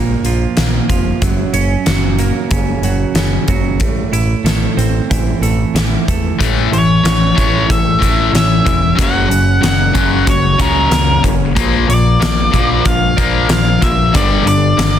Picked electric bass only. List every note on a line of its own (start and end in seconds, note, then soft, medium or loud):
0.00 0.14 A#1 medium
0.23 0.46 A#1 medium
0.57 0.79 A#1 medium
0.90 1.11 F1 medium
1.22 1.44 F#1 medium
1.53 1.75 F#1 medium
1.86 2.30 F#1 medium
2.51 2.73 F#1 medium
2.82 3.04 F#1 medium
3.14 3.36 F#1 medium
3.48 3.81 F#1 medium
3.81 4.03 A1 medium
4.12 4.34 A1 medium
4.44 4.66 A1 medium
4.77 4.99 A1 medium
5.11 5.33 A1 medium
5.41 5.63 A1 medium
5.74 5.96 A1 medium
6.08 6.30 E2 medium
6.41 6.67 A1 medium
6.72 6.99 A1 medium
7.04 7.31 A1 medium
7.38 7.64 A1 medium
7.70 7.97 A1 medium
8.02 8.29 A1 medium
8.32 8.60 A1 medium
8.66 8.93 E1 medium
8.99 9.26 F#1 medium
9.30 9.58 F#1 medium
9.62 9.90 F#1 medium
9.95 10.23 F#1 medium
10.28 10.55 F#1 medium
10.59 10.87 C#2 medium
10.90 11.18 C#2 medium
11.24 11.57 F#1 medium
11.57 11.84 A#1 medium
11.88 12.16 A#1 medium
12.20 12.48 A#1 medium
12.54 12.81 A#1 medium
12.85 13.13 A#1 medium
13.18 13.45 A#1 medium
13.48 13.76 A#1 medium
13.82 14.09 A#1 medium
14.15 14.42 G1 medium
14.44 14.72 G1 medium
14.78 14.99 G1 medium